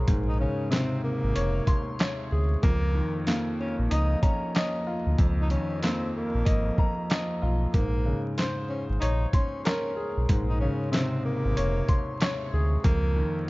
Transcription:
Already playing: grand piano G#4 A#4 C5 C#5 C6
0.08 sub bass A#1, grand piano G#2, kick, closed hi-hat
0.29 tenor saxophone D#4
0.39 grand piano C#3, tenor saxophone C#4
0.71 grand piano C3, tenor saxophone C4, snare, clap, closed hi-hat
1.04 tenor saxophone A#3
1.23 sub bass G#1
1.35 sub bass F1, grand piano C#5, closed hi-hat
1.67 grand piano C6, kick, closed hi-hat
1.99 grand piano C#5, snare, clap, closed hi-hat
2.32 sub bass D2, grand piano G#4
2.63 sub bass C#2, grand piano F2, tenor saxophone A#3, kick, closed hi-hat
2.95 grand piano D#3
3.27 grand piano A#3, snare, clap, closed hi-hat
3.60 tenor saxophone C#4
3.79 sub bass A#1
3.90 sub bass C#2, tenor saxophone D#4, grand piano D#5, closed hi-hat
4.21 tenor saxophone C#4, grand piano A#5, kick, closed hi-hat
4.55 tenor saxophone C#4, grand piano D#5, snare, clap, closed hi-hat
4.87 grand piano F4
5.06 sub bass D2
5.18 sub bass C#2, grand piano F2, kick, closed hi-hat
5.42 tenor saxophone D#4
5.50 grand piano D#3, tenor saxophone C#4, closed hi-hat
5.82 grand piano A#3, tenor saxophone C4, snare, clap, closed hi-hat
6.16 tenor saxophone A#3
6.34 sub bass A#1
6.45 sub bass G#1, grand piano D#5, kick, closed hi-hat
6.78 grand piano A#5, kick
7.10 grand piano D#5, snare, clap, closed hi-hat
7.42 sub bass B1, grand piano F4
7.74 sub bass A#1, grand piano G#2, tenor saxophone A#3, kick, closed hi-hat
8.06 grand piano C#3
8.38 grand piano C5, snare, clap, closed hi-hat
8.69 tenor saxophone C#4
8.89 sub bass G#1
9.00 sub bass A#1, tenor saxophone D#4, grand piano C#5, closed hi-hat
9.33 tenor saxophone C#4, grand piano C6, kick, closed hi-hat
9.64 tenor saxophone C#4, grand piano A#4, snare, clap, closed hi-hat
9.96 grand piano G#4
10.17 sub bass B1
10.29 sub bass A#1, grand piano G#2, kick, closed hi-hat
10.49 tenor saxophone D#4
10.60 grand piano C#3, tenor saxophone C#4
10.92 grand piano C3, tenor saxophone C4, snare, clap, closed hi-hat
11.25 tenor saxophone A#3
11.45 sub bass G#1
11.57 sub bass F1, grand piano C#5, closed hi-hat
11.88 grand piano C6, kick, closed hi-hat
12.21 grand piano C#5, snare, clap, closed hi-hat
12.53 sub bass D2, grand piano G#4
12.84 sub bass C#2, grand piano F2, tenor saxophone A#3, kick, closed hi-hat
13.16 grand piano D#3

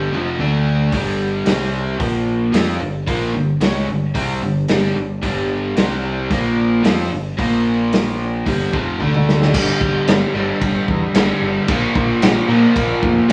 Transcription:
Already playing: picked electric bass G1, overdriven electric guitar G2 D3 G3
0.11 picked electric bass F1, overdriven electric guitar F2 C3 F3
0.39 picked electric bass D2, overdriven electric guitar D3 A3 D4
0.92 picked electric bass G1, overdriven electric guitar G2 D3 G3, kick, open hi-hat
1.46 picked electric bass C2, overdriven electric guitar C3 G3 C4, snare, open hi-hat
2.00 picked electric bass A#1, overdriven electric guitar A#2 F3 A#3, kick, open hi-hat
2.53 picked electric bass F2, overdriven electric guitar F3 C4 F4, snare, open hi-hat
2.81 picked electric bass G1, overdriven electric guitar G2 D3
3.07 picked electric bass A#1, overdriven electric guitar A#2 F3 A#3, kick, open hi-hat
3.34 picked electric bass G1, overdriven electric guitar G2 D3
3.61 picked electric bass C#2, overdriven electric guitar C#3 G#3 C#4, snare, open hi-hat
3.88 picked electric bass G1, overdriven electric guitar G2 D3
4.14 picked electric bass C2, overdriven electric guitar C3 G3 C4, kick, open hi-hat
4.42 picked electric bass G1, overdriven electric guitar G2 D3
4.68 picked electric bass G1, overdriven electric guitar G2 D3 G3, snare, open hi-hat
4.95 picked electric bass G1, overdriven electric guitar G2 D3
5.22 picked electric bass G1, overdriven electric guitar G2 D3 G3, kick, open hi-hat
5.76 picked electric bass C2, overdriven electric guitar C3 G3 C4, snare, open hi-hat
6.30 picked electric bass A#1, overdriven electric guitar A#2 F3 A#3, kick, open hi-hat
6.84 picked electric bass F2, overdriven electric guitar F3 C4 F4, snare, open hi-hat
7.11 picked electric bass G1, overdriven electric guitar G2 D3
7.38 picked electric bass A#1, overdriven electric guitar A#2 F3 A#3, kick, open hi-hat
7.93 snare, open hi-hat
8.46 picked electric bass G1, overdriven electric guitar G2 D3 G3, kick, open hi-hat
8.72 picked electric bass F1, overdriven electric guitar F2 C3 F3, kick
8.99 picked electric bass D2, overdriven electric guitar D3 A3 D4, kick
9.14 mid tom
9.29 snare
9.42 snare
9.53 picked electric bass G1, overdriven electric guitar G2 D3 G3, kick, crash
9.81 picked electric bass G1, kick
10.08 picked electric bass G1, snare, crash
10.34 picked electric bass G1, overdriven electric guitar G2 D3 G3
10.61 picked electric bass G1, kick, crash
10.88 picked electric bass E2, kick
11.14 picked electric bass G1, overdriven electric guitar G2 D3 G3, snare, crash
11.42 picked electric bass G1
11.68 picked electric bass A#1, overdriven electric guitar A#2 F3, kick, crash
11.72 overdriven electric guitar A#3
11.95 picked electric bass A#1, kick
12.22 picked electric bass A#1, snare, crash
12.48 picked electric bass A#2, overdriven electric guitar A#2 F3 A#3
12.76 picked electric bass A#1, kick, crash
13.03 picked electric bass F1, kick
13.29 overdriven electric guitar A#2

